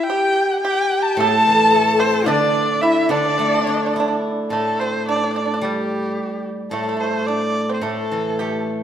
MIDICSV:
0, 0, Header, 1, 6, 480
1, 0, Start_track
1, 0, Tempo, 549954
1, 71, Time_signature, 2, 2, 24, 8
1, 2950, Tempo, 557103
1, 7648, End_track
2, 0, Start_track
2, 0, Title_t, "Dizi"
2, 0, Program_c, 0, 73
2, 0, Note_on_c, 0, 76, 74
2, 79, Note_on_c, 0, 79, 87
2, 92, Note_off_c, 0, 76, 0
2, 559, Note_off_c, 0, 79, 0
2, 565, Note_on_c, 0, 79, 81
2, 1048, Note_on_c, 0, 81, 94
2, 1061, Note_off_c, 0, 79, 0
2, 2000, Note_on_c, 0, 74, 77
2, 2013, Note_off_c, 0, 81, 0
2, 2468, Note_on_c, 0, 79, 76
2, 2481, Note_off_c, 0, 74, 0
2, 2501, Note_on_c, 0, 76, 82
2, 2510, Note_off_c, 0, 79, 0
2, 2698, Note_off_c, 0, 76, 0
2, 2704, Note_on_c, 0, 74, 89
2, 3645, Note_off_c, 0, 74, 0
2, 7648, End_track
3, 0, Start_track
3, 0, Title_t, "Erhu"
3, 0, Program_c, 1, 110
3, 30, Note_on_c, 1, 79, 101
3, 520, Note_off_c, 1, 79, 0
3, 525, Note_on_c, 1, 79, 103
3, 893, Note_on_c, 1, 81, 99
3, 906, Note_off_c, 1, 79, 0
3, 1018, Note_off_c, 1, 81, 0
3, 1023, Note_on_c, 1, 81, 125
3, 1740, Note_on_c, 1, 72, 96
3, 1753, Note_off_c, 1, 81, 0
3, 1968, Note_on_c, 1, 74, 106
3, 1981, Note_off_c, 1, 72, 0
3, 2454, Note_on_c, 1, 76, 108
3, 2467, Note_off_c, 1, 74, 0
3, 2702, Note_on_c, 1, 74, 102
3, 2715, Note_off_c, 1, 76, 0
3, 3679, Note_off_c, 1, 74, 0
3, 3925, Note_on_c, 1, 69, 84
3, 4169, Note_on_c, 1, 72, 81
3, 4182, Note_off_c, 1, 69, 0
3, 4409, Note_off_c, 1, 72, 0
3, 4419, Note_on_c, 1, 74, 88
3, 4636, Note_off_c, 1, 74, 0
3, 4667, Note_on_c, 1, 74, 72
3, 4890, Note_on_c, 1, 67, 75
3, 4903, Note_off_c, 1, 74, 0
3, 5593, Note_off_c, 1, 67, 0
3, 5823, Note_on_c, 1, 69, 82
3, 6071, Note_on_c, 1, 72, 77
3, 6084, Note_off_c, 1, 69, 0
3, 6296, Note_on_c, 1, 74, 91
3, 6309, Note_off_c, 1, 72, 0
3, 6703, Note_off_c, 1, 74, 0
3, 6708, Note_on_c, 1, 72, 50
3, 6780, Note_on_c, 1, 69, 81
3, 6793, Note_off_c, 1, 72, 0
3, 7505, Note_off_c, 1, 69, 0
3, 7648, End_track
4, 0, Start_track
4, 0, Title_t, "Horsehead fiddle"
4, 0, Program_c, 2, 110
4, 81, Note_on_c, 2, 67, 77
4, 526, Note_off_c, 2, 67, 0
4, 556, Note_on_c, 2, 67, 90
4, 1037, Note_on_c, 2, 69, 94
4, 1050, Note_off_c, 2, 67, 0
4, 1977, Note_on_c, 2, 62, 77
4, 1990, Note_off_c, 2, 69, 0
4, 2461, Note_off_c, 2, 62, 0
4, 2466, Note_on_c, 2, 64, 90
4, 2704, Note_on_c, 2, 62, 84
4, 2717, Note_off_c, 2, 64, 0
4, 3680, Note_off_c, 2, 62, 0
4, 7648, End_track
5, 0, Start_track
5, 0, Title_t, "Pipa"
5, 0, Program_c, 3, 105
5, 84, Note_on_c, 3, 67, 88
5, 528, Note_off_c, 3, 67, 0
5, 564, Note_on_c, 3, 67, 80
5, 1008, Note_off_c, 3, 67, 0
5, 1051, Note_on_c, 3, 69, 89
5, 1723, Note_off_c, 3, 69, 0
5, 1753, Note_on_c, 3, 60, 79
5, 1974, Note_off_c, 3, 60, 0
5, 1987, Note_on_c, 3, 62, 89
5, 2433, Note_off_c, 3, 62, 0
5, 2468, Note_on_c, 3, 64, 83
5, 2691, Note_off_c, 3, 64, 0
5, 2713, Note_on_c, 3, 62, 76
5, 2750, Note_off_c, 3, 62, 0
5, 2760, Note_on_c, 3, 62, 51
5, 2826, Note_off_c, 3, 62, 0
5, 2835, Note_on_c, 3, 62, 56
5, 2866, Note_off_c, 3, 62, 0
5, 2877, Note_on_c, 3, 62, 44
5, 2937, Note_off_c, 3, 62, 0
5, 2948, Note_on_c, 3, 62, 57
5, 3003, Note_off_c, 3, 62, 0
5, 3013, Note_on_c, 3, 62, 45
5, 3081, Note_off_c, 3, 62, 0
5, 3090, Note_on_c, 3, 62, 54
5, 3143, Note_off_c, 3, 62, 0
5, 3153, Note_on_c, 3, 62, 48
5, 3209, Note_off_c, 3, 62, 0
5, 3220, Note_on_c, 3, 62, 45
5, 3274, Note_off_c, 3, 62, 0
5, 3284, Note_on_c, 3, 62, 47
5, 3348, Note_off_c, 3, 62, 0
5, 3365, Note_on_c, 3, 62, 50
5, 3422, Note_off_c, 3, 62, 0
5, 3431, Note_on_c, 3, 62, 44
5, 3472, Note_off_c, 3, 62, 0
5, 3483, Note_on_c, 3, 62, 63
5, 3543, Note_off_c, 3, 62, 0
5, 3553, Note_on_c, 3, 62, 54
5, 3614, Note_off_c, 3, 62, 0
5, 3939, Note_on_c, 3, 57, 72
5, 4160, Note_off_c, 3, 57, 0
5, 4184, Note_on_c, 3, 60, 65
5, 4400, Note_off_c, 3, 60, 0
5, 4420, Note_on_c, 3, 62, 72
5, 4474, Note_off_c, 3, 62, 0
5, 4485, Note_on_c, 3, 62, 53
5, 4539, Note_off_c, 3, 62, 0
5, 4550, Note_on_c, 3, 62, 60
5, 4603, Note_off_c, 3, 62, 0
5, 4614, Note_on_c, 3, 62, 46
5, 4646, Note_off_c, 3, 62, 0
5, 4657, Note_on_c, 3, 62, 62
5, 4719, Note_off_c, 3, 62, 0
5, 4738, Note_on_c, 3, 62, 49
5, 4792, Note_off_c, 3, 62, 0
5, 4809, Note_on_c, 3, 62, 62
5, 4860, Note_off_c, 3, 62, 0
5, 4903, Note_on_c, 3, 55, 63
5, 5565, Note_off_c, 3, 55, 0
5, 5838, Note_on_c, 3, 57, 55
5, 5894, Note_off_c, 3, 57, 0
5, 5926, Note_on_c, 3, 57, 41
5, 5961, Note_off_c, 3, 57, 0
5, 5972, Note_on_c, 3, 57, 53
5, 6024, Note_off_c, 3, 57, 0
5, 6040, Note_on_c, 3, 57, 45
5, 6087, Note_off_c, 3, 57, 0
5, 6098, Note_on_c, 3, 57, 48
5, 6150, Note_off_c, 3, 57, 0
5, 6164, Note_on_c, 3, 57, 41
5, 6215, Note_off_c, 3, 57, 0
5, 6232, Note_on_c, 3, 57, 49
5, 6281, Note_off_c, 3, 57, 0
5, 6312, Note_on_c, 3, 62, 59
5, 6639, Note_off_c, 3, 62, 0
5, 6667, Note_on_c, 3, 60, 55
5, 6775, Note_off_c, 3, 60, 0
5, 6783, Note_on_c, 3, 57, 65
5, 7229, Note_off_c, 3, 57, 0
5, 7267, Note_on_c, 3, 67, 68
5, 7491, Note_off_c, 3, 67, 0
5, 7648, End_track
6, 0, Start_track
6, 0, Title_t, "Guzheng"
6, 0, Program_c, 4, 107
6, 1018, Note_on_c, 4, 45, 64
6, 1280, Note_on_c, 4, 52, 45
6, 1516, Note_on_c, 4, 57, 43
6, 1974, Note_on_c, 4, 50, 67
6, 1980, Note_off_c, 4, 45, 0
6, 2230, Note_off_c, 4, 52, 0
6, 2469, Note_off_c, 4, 57, 0
6, 2686, Note_off_c, 4, 50, 0
6, 2697, Note_on_c, 4, 50, 68
6, 2957, Note_on_c, 4, 57, 52
6, 3199, Note_on_c, 4, 62, 54
6, 3448, Note_on_c, 4, 64, 47
6, 3917, Note_on_c, 4, 45, 56
6, 3931, Note_off_c, 4, 57, 0
6, 4165, Note_off_c, 4, 50, 0
6, 4174, Note_off_c, 4, 62, 0
6, 4416, Note_off_c, 4, 64, 0
6, 4875, Note_on_c, 4, 55, 57
6, 5350, Note_off_c, 4, 45, 0
6, 5820, Note_on_c, 4, 45, 57
6, 6300, Note_off_c, 4, 55, 0
6, 6760, Note_off_c, 4, 45, 0
6, 6770, Note_on_c, 4, 45, 56
6, 7029, Note_on_c, 4, 52, 40
6, 7273, Note_on_c, 4, 57, 35
6, 7648, Note_off_c, 4, 45, 0
6, 7648, Note_off_c, 4, 52, 0
6, 7648, Note_off_c, 4, 57, 0
6, 7648, End_track
0, 0, End_of_file